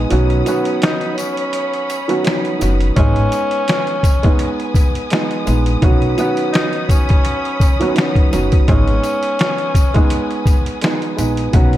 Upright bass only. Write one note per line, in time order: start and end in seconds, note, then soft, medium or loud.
0.12 0.40 B1 loud
2.62 2.90 F#1 medium
2.97 3.26 G#1 loud
5.47 5.76 A#1 medium
5.83 6.11 B1 loud
8.33 8.62 F#1 medium
8.69 8.97 G#1 loud
11.19 11.47 A#1 medium
11.54 11.77 B1 loud